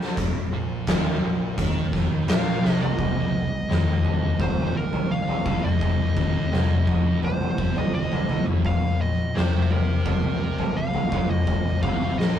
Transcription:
0.01 snare
0.17 kick, closed hi-hat
0.52 picked electric bass A#1, distorted electric guitar A#2
0.87 picked electric bass D#2, distorted electric guitar D#3, kick, snare, closed hi-hat
1.23 picked electric bass A#1, distorted electric guitar A#2
1.57 picked electric bass D#2, distorted electric guitar D#3, kick, closed hi-hat
1.93 kick, snare
2.28 picked electric bass A#1, distorted electric guitar A#2, lead electric guitar F5, snare, closed hi-hat
2.63 picked electric bass C2, distorted electric guitar C3, snare
2.81 lead electric guitar D#5, floor tom
2.98 picked electric bass C1, distorted electric guitar C2, kick, floor tom
3.34 picked electric bass C1, distorted electric guitar C2
3.68 picked electric bass D#1, distorted electric guitar D#2, snare, mid tom
3.87 mid tom
4.05 floor tom
4.39 lead electric guitar C5, kick, floor tom
4.58 floor tom
4.77 lead electric guitar A#4
4.93 floor tom
5.12 lead electric guitar F5
5.28 floor tom
5.45 picked electric bass C1, distorted electric guitar C2, kick, floor tom
5.64 lead electric guitar D#5, mid tom
5.81 kick, floor tom
6.16 picked electric bass D#1, distorted electric guitar D#2, kick
6.51 picked electric bass C1, distorted electric guitar C2, snare, mid tom
6.69 mid tom
6.87 picked electric bass F1, distorted electric guitar F2, kick, floor tom
7.23 lead electric guitar C5, floor tom
7.41 floor tom
7.58 picked electric bass D#1, distorted electric guitar D#2, kick
7.76 lead electric guitar D#5, floor tom
7.95 lead electric guitar D#5
8.12 floor tom
8.29 floor tom
8.47 mid tom
8.64 picked electric bass A#1, distorted electric guitar A#2, lead electric guitar F5, kick, floor tom
8.99 picked electric bass A#1, distorted electric guitar A#2, lead electric guitar D#5
9.34 picked electric bass C2, distorted electric guitar C3, lead electric guitar C5, snare, mid tom
9.53 mid tom
9.71 lead electric guitar A#4, floor tom
10.05 kick, floor tom
10.23 floor tom
10.59 floor tom
10.77 lead electric guitar F5
10.94 floor tom
11.12 picked electric bass A#1, distorted electric guitar A#2, kick, floor tom
11.29 lead electric guitar D#5, mid tom
11.47 kick, floor tom
11.82 picked electric bass C2, distorted electric guitar C3, lead electric guitar F5, kick, floor tom
12.18 picked electric bass A#1, distorted electric guitar A#2, lead electric guitar D#5, snare

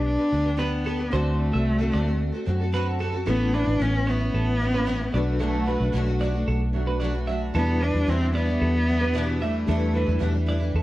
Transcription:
Already playing: fingered electric bass B1, steel-string acoustic guitar B3 D4 G4 B4, reed electric piano B3 G4 D5
0.05 cello D4
0.17 steel-string acoustic guitar D4 G4 B4
0.30 fingered electric bass D2, steel-string acoustic guitar B3 D4 G4 B4
0.43 steel-string acoustic guitar D4 G4 B4
0.57 steel-string acoustic guitar B3 D4 G4 B4, cello B3, clean electric guitar B4
0.84 steel-string acoustic guitar B3 D4 G4 B4, clean electric guitar A4
0.97 steel-string acoustic guitar D4 G4 B4
1.10 fingered electric bass D2, steel-string acoustic guitar D3 C4 F#4 A4, cello A3, reed electric piano C4 F#4, clean electric guitar C5
1.15 reed electric piano D5
1.51 fingered electric bass C2, steel-string acoustic guitar C4 F#4 A4, clean electric guitar E5
1.78 steel-string acoustic guitar D3 C4 F#4 A4
1.91 fingered electric bass D2, steel-string acoustic guitar D3 C4 F#4 A4, clean electric guitar D5
2.05 steel-string acoustic guitar C4 F#4 A4
2.32 steel-string acoustic guitar C4 F#4 A4
2.45 fingered electric bass F#2, steel-string acoustic guitar D3 C4 F#4 A4
2.60 steel-string acoustic guitar C4 F#4 A4
2.72 steel-string acoustic guitar D3 C4 F#4 A4, clean electric guitar B4
2.99 steel-string acoustic guitar D3 C4 F#4 A4, clean electric guitar A4
3.12 steel-string acoustic guitar C4 F#4 A4
3.25 fingered electric bass A1, steel-string acoustic guitar A2 E3 B3 C#4 E4, reed electric piano A3 C#4 E4, cello B3, clean electric guitar A4
3.30 reed electric piano B4
3.53 steel-string acoustic guitar E3 B3 C#4 E4, cello D4, clean electric guitar B4
3.66 fingered electric bass A1, steel-string acoustic guitar B3 C#4 E4
3.80 fingered electric bass A1, steel-string acoustic guitar A2 E3 B3 C#4 E4, cello C#4
3.93 steel-string acoustic guitar B3 C#4 E4
4.06 steel-string acoustic guitar E3 B3 C#4 E4, cello B3, clean electric guitar C#5
4.19 steel-string acoustic guitar B3 C#4 E4
4.34 fingered electric bass A1, clean electric guitar A4
4.59 steel-string acoustic guitar E3 B3 C#4 E4
4.72 steel-string acoustic guitar B3 C#4 E4, clean electric guitar B4
4.85 steel-string acoustic guitar A2 E3 B3 C#4 E4, clean electric guitar C#5
4.99 steel-string acoustic guitar B3 C#4 E4
5.12 fingered electric bass B1, steel-string acoustic guitar F#3 A3 D4 F#4, reed electric piano A3 D4 F#4, cello A3, clean electric guitar D5
5.16 reed electric piano B4
5.39 steel-string acoustic guitar B2 F#3 A3 D4 F#4, clean electric guitar A4
5.65 steel-string acoustic guitar F#3 A3 D4 F#4, clean electric guitar B4
5.79 fingered electric bass B1, steel-string acoustic guitar A3 D4 F#4
5.92 fingered electric bass B1, steel-string acoustic guitar B2 F#3 A3 D4 F#4
6.06 steel-string acoustic guitar A3 D4 F#4
6.19 steel-string acoustic guitar F#3 A3 D4 F#4, clean electric guitar D5
6.32 steel-string acoustic guitar A3 D4 F#4
6.48 fingered electric bass B1, clean electric guitar A4
6.73 steel-string acoustic guitar F#3 A3 D4 F#4
6.86 steel-string acoustic guitar A3 D4 F#4, clean electric guitar B4
7.00 steel-string acoustic guitar B2 F#3 A3 D4 F#4, clean electric guitar D5
7.13 steel-string acoustic guitar A3 D4 F#4
7.27 steel-string acoustic guitar F#3 A3 D4 F#4, clean electric guitar E5
7.52 steel-string acoustic guitar E2 B2 E3 G3 D4 E4, fingered electric bass E2, reed electric piano G3 D4 E4 B4, cello B3, clean electric guitar A4
7.80 steel-string acoustic guitar E3 G3 D4 E4, cello D4, clean electric guitar B4
7.93 fingered electric bass E2, steel-string acoustic guitar E3 G3 D4 E4
8.06 steel-string acoustic guitar E2 B2 E3 G3 D4 E4, fingered electric bass E2, cello C4
8.20 steel-string acoustic guitar E3 G3 D4 E4
8.33 steel-string acoustic guitar E3 G3 D4 E4, cello B3, clean electric guitar D5
8.46 steel-string acoustic guitar E3 G3 D4 E4
8.62 fingered electric bass E2, clean electric guitar A4
8.86 steel-string acoustic guitar E3 G3 D4 E4
9.00 steel-string acoustic guitar E3 G3 D4 E4, clean electric guitar B4
9.13 steel-string acoustic guitar E2 B2 E3 G3 D4 E4, clean electric guitar D5
9.40 steel-string acoustic guitar E3 G3 D4 E4, cello A3, clean electric guitar E5
9.66 steel-string acoustic guitar E2 B2 E3 G3 D4 E4, fingered electric bass E2, reed electric piano G3 D4 E4, clean electric guitar A4
9.70 reed electric piano A4
9.77 reed electric piano B4
9.93 steel-string acoustic guitar E3 G3 D4 E4, clean electric guitar B4
10.06 fingered electric bass E2, steel-string acoustic guitar E3 G3 D4 E4
10.19 steel-string acoustic guitar E2 B2 E3 G3 D4 E4, fingered electric bass E2
10.32 steel-string acoustic guitar E3 G3 D4 E4
10.46 steel-string acoustic guitar E3 G3 D4 E4, clean electric guitar D5
10.59 steel-string acoustic guitar E3 G3 D4 E4
10.74 fingered electric bass E2, clean electric guitar A4

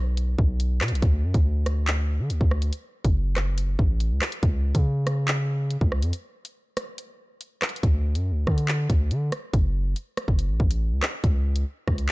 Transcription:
Already playing: 808-style bass B1
0.17 closed hi-hat
0.39 808-style bass B1, kick
0.60 closed hi-hat
0.81 808-style bass B2, cross-stick, clap, closed hi-hat
0.88 808-style bass B1, closed hi-hat
0.95 closed hi-hat
1.02 808-style bass D2, kick, closed hi-hat
1.24 808-style bass F#2
1.34 808-style bass D2, kick, closed hi-hat
1.66 cross-stick, closed hi-hat
1.87 clap, closed hi-hat
2.19 808-style bass D3
2.30 808-style bass D2, closed hi-hat
2.41 808-style bass D2, kick
2.51 cross-stick
2.62 closed hi-hat
2.73 closed hi-hat
3.05 808-style bass F#1, kick, closed hi-hat
3.36 cross-stick, clap, closed hi-hat
3.58 closed hi-hat
3.79 808-style bass A1, kick
4.00 closed hi-hat
4.11 808-style bass C#2
4.22 cross-stick, clap, open hi-hat
4.32 closed hi-hat
4.43 808-style bass C#2, kick, closed hi-hat
4.75 808-style bass C#3, kick, closed hi-hat
5.07 cross-stick, closed hi-hat
5.28 clap, closed hi-hat
5.71 closed hi-hat
5.81 808-style bass C#2, kick
5.92 cross-stick
6.02 808-style bass F2, closed hi-hat
6.13 closed hi-hat
6.45 closed hi-hat
6.77 cross-stick, closed hi-hat
6.98 closed hi-hat
7.41 closed hi-hat
7.62 cross-stick, clap, closed hi-hat
7.69 closed hi-hat
7.76 closed hi-hat
7.83 808-style bass D2, kick, closed hi-hat
8.15 808-style bass F#2, closed hi-hat
8.31 808-style bass D2
8.47 808-style bass D3, kick, cross-stick
8.58 closed hi-hat
8.68 clap
8.90 808-style bass D2, kick, closed hi-hat
9.11 808-style bass D3, closed hi-hat
9.32 cross-stick, closed hi-hat
9.54 808-style bass F#1, kick, closed hi-hat
9.96 closed hi-hat
10.17 cross-stick, closed hi-hat
10.28 808-style bass F#1, kick
10.39 closed hi-hat
10.49 808-style bass A1
10.60 808-style bass A1, kick
10.71 closed hi-hat
10.92 808-style bass C#2
11.02 cross-stick, clap, closed hi-hat
11.24 808-style bass C#2, kick, closed hi-hat
11.56 closed hi-hat
11.88 808-style bass C#2, kick, cross-stick
11.98 closed hi-hat

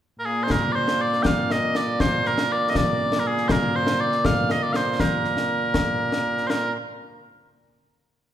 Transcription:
0.19 bagpipes A#2 A#3 A#4
0.25 bagpipes G#4
0.43 bagpipes C5
0.50 bagpipes A#4, concert bass drum, snare
0.72 bagpipes C5 D5
0.88 snare
1.01 bagpipes D5
1.13 snare
1.23 bagpipes F5 G5, concert bass drum, snare
1.50 bagpipes D#5, snare
1.75 bagpipes D5, snare
2.00 bagpipes C5, concert bass drum, snare
2.26 bagpipes A#4, snare
2.38 snare
2.52 bagpipes D5
2.70 bagpipes D#5
2.75 bagpipes D5, concert bass drum, snare
3.12 snare
3.19 bagpipes A#4
3.27 bagpipes G#4
3.37 snare
3.48 bagpipes A#4 C5, concert bass drum, snare
3.76 bagpipes C5
3.87 snare
4.01 bagpipes D5
4.12 snare
4.25 bagpipes F5, concert bass drum, snare
4.50 bagpipes D#5, snare
4.63 bagpipes D5
4.73 bagpipes C5 F5, snare
5.00 bagpipes A#4, concert bass drum, snare
5.24 snare
5.37 snare
5.74 concert bass drum, snare
6.12 snare
6.38 snare
6.47 bagpipes A#4 C5, snare

